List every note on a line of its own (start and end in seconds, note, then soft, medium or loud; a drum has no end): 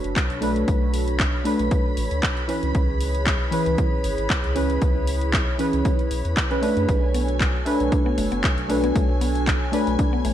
0.00 0.39 A3 medium
0.00 0.39 D4 medium
0.00 2.45 D4 medium
0.00 2.45 F#4 medium
0.00 2.45 A4 medium
0.00 0.40 B4 loud
0.00 10.34 C#5 medium
0.00 6.90 B5 medium
0.04 0.14 F#1 loud
0.04 closed hi-hat medium
0.16 kick loud
0.16 clap loud
0.16 closed hi-hat medium
0.30 0.65 B1 medium
0.30 closed hi-hat soft
0.41 1.42 A3 medium
0.41 1.43 D4 medium
0.41 1.43 B4 loud
0.41 open hi-hat loud
0.56 closed hi-hat medium
0.68 1.30 B1 loud
0.68 kick loud
0.68 closed hi-hat medium
0.94 open hi-hat loud
1.08 closed hi-hat medium
1.20 kick loud
1.20 clap loud
1.20 closed hi-hat medium
1.44 2.45 A3 loud
1.44 2.46 D4 medium
1.44 2.47 B4 loud
1.44 open hi-hat loud
1.59 1.69 B1 medium
1.59 closed hi-hat soft
1.71 kick loud
1.71 closed hi-hat medium
1.97 2.09 A1 medium
1.97 open hi-hat loud
2.11 2.21 D2 medium
2.11 closed hi-hat soft
2.23 kick loud
2.23 clap loud
2.23 closed hi-hat medium
2.37 closed hi-hat soft
2.48 3.49 E3 medium
2.48 3.49 C#4 medium
2.48 6.84 E4 medium
2.48 6.84 G#4 medium
2.48 6.84 B4 medium
2.48 3.50 B4 loud
2.48 open hi-hat loud
2.63 2.73 C#2 loud
2.63 closed hi-hat medium
2.75 3.37 C#2 loud
2.75 kick loud
2.75 closed hi-hat medium
3.01 open hi-hat loud
3.15 closed hi-hat medium
3.26 kick loud
3.26 clap loud
3.26 closed hi-hat medium
3.51 4.52 E3 medium
3.51 4.53 C#4 medium
3.51 4.53 B4 loud
3.51 open hi-hat loud
3.66 3.76 C#2 medium
3.66 closed hi-hat soft
3.78 kick loud
3.78 closed hi-hat medium
4.04 4.16 G#1 medium
4.04 open hi-hat loud
4.18 4.28 G#1 loud
4.18 closed hi-hat soft
4.30 kick loud
4.30 clap loud
4.30 closed hi-hat medium
4.44 4.78 C#2 medium
4.44 closed hi-hat soft
4.55 5.56 E3 medium
4.55 5.56 C#4 medium
4.55 5.57 B4 loud
4.55 open hi-hat loud
4.70 closed hi-hat soft
4.82 5.43 C#2 loud
4.82 kick loud
4.82 closed hi-hat medium
5.07 open hi-hat loud
5.21 closed hi-hat soft
5.33 kick loud
5.33 clap loud
5.33 closed hi-hat medium
5.58 6.47 E3 loud
5.58 6.48 C#4 medium
5.58 6.49 B4 loud
5.58 open hi-hat loud
5.73 5.83 C#2 medium
5.73 closed hi-hat soft
5.85 kick loud
5.85 closed hi-hat medium
5.99 closed hi-hat soft
6.11 6.22 B1 medium
6.11 open hi-hat loud
6.25 6.35 E2 medium
6.25 closed hi-hat soft
6.37 kick loud
6.37 clap loud
6.37 closed hi-hat medium
6.50 6.61 E3 loud
6.50 6.61 C#4 medium
6.50 6.61 B4 loud
6.50 closed hi-hat soft
6.62 7.63 A3 medium
6.62 7.63 D4 medium
6.62 7.64 B4 loud
6.62 open hi-hat loud
6.77 6.86 F#2 medium
6.77 closed hi-hat soft
6.89 7.50 B1 loud
6.89 7.00 A3 loud
6.89 10.34 D4 medium
6.89 10.34 F#4 medium
6.89 10.34 A4 medium
6.89 10.34 G#5 medium
6.89 kick loud
6.89 closed hi-hat medium
7.14 7.22 B3 medium
7.14 open hi-hat loud
7.28 closed hi-hat soft
7.40 kick loud
7.40 clap loud
7.40 closed hi-hat medium
7.65 8.66 A3 medium
7.65 8.67 D4 medium
7.65 8.67 B4 loud
7.65 open hi-hat loud
7.80 7.90 B1 medium
7.80 closed hi-hat soft
7.92 8.03 D4 loud
7.92 kick loud
7.92 closed hi-hat medium
8.06 8.16 B3 loud
8.18 8.29 F#1 medium
8.18 8.29 A3 medium
8.18 open hi-hat loud
8.32 8.42 F#1 loud
8.32 8.38 B3 medium
8.32 closed hi-hat soft
8.44 kick loud
8.44 clap loud
8.44 closed hi-hat medium
8.58 8.92 B1 medium
8.58 closed hi-hat soft
8.68 9.70 A3 medium
8.68 9.70 D4 medium
8.68 8.77 D4 medium
8.68 9.71 B4 loud
8.68 open hi-hat loud
8.84 8.87 B3 medium
8.84 closed hi-hat soft
8.95 9.57 B1 loud
8.95 9.07 A3 loud
8.95 kick loud
8.95 closed hi-hat medium
9.21 9.29 B3 medium
9.21 open hi-hat loud
9.35 closed hi-hat medium
9.47 kick loud
9.47 clap loud
9.47 closed hi-hat medium
9.72 10.34 A3 medium
9.72 10.34 D4 medium
9.72 10.34 B4 loud
9.72 open hi-hat loud
9.87 9.97 B1 medium
9.87 closed hi-hat soft
9.99 10.10 D4 loud
9.99 kick loud
9.99 closed hi-hat medium
10.13 10.22 B3 loud
10.25 10.34 A1 medium
10.25 10.34 A3 medium
10.25 open hi-hat loud